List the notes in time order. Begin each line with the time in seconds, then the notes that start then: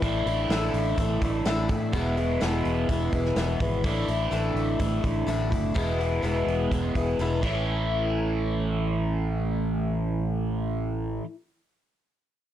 0.02 A1 A2 D3 E3 A3 D4 E4, kick, open hi-hat
0.26 A1 A3 D4 E4, open hi-hat
0.49 A1 A2 D3 A3 D4 E4, snare, open hi-hat
0.74 A1, open hi-hat
0.98 A1 D3 A3 D4 E4, kick, open hi-hat
1.21 A1 A3 D4 E4, kick, open hi-hat
1.45 A1 A2 D3 A3 D4 E4, snare, open hi-hat
1.69 A2 A3 E4, kick, open hi-hat
1.93 E1 E2 B2 E3 G#3 B3 E4, kick, open hi-hat
2.16 E3 G#3 B3 E4, open hi-hat
2.40 E1 E2 B2 E3 G#3 B3 E4, snare, open hi-hat
2.65 E1, open hi-hat
2.89 E1 E3 G#3 B3 E4, kick, open hi-hat
3.12 E1 E3 G#3 B3 E4, kick, open hi-hat
3.25 snare
3.36 E1 E2 B2 E3 G#3 B3 E4, snare, open hi-hat
3.60 G#1 E3 G#3 B3 E4, kick, open hi-hat
3.84 A1 A2 D3 E3 A3 D4 E4, kick, open hi-hat
4.08 A1 A3 D4 E4, open hi-hat
4.31 A1 A2 E3 A3 D4 E4, open hi-hat
4.54 A1, open hi-hat
4.79 A1 E3 A3 D4 E4, kick, open hi-hat
5.03 A1 A3 D4 E4, kick, open hi-hat
5.27 A1 A2 E3 A3 D4 E4, open hi-hat
5.50 F#1 A3 D4 E4, kick, open hi-hat
5.74 E1 E2 B2 E3 G#3 B3 E4, kick, open hi-hat
5.98 E3 G#3 B3 E4, open hi-hat
6.22 E1 E2 B2 E3 G#3 B3 E4, open hi-hat
6.47 E1, open hi-hat
6.71 E1 E3 G#3 B3 E4, kick, open hi-hat
6.95 E1 E3 G#3 B3 E4, kick, open hi-hat
7.19 E1 E2 B2 E3 G#3 B3 E4, open hi-hat
7.41 A1 A2 A3 C#4, kick, crash
7.45 E3 A3 E4
7.52 C#4 E4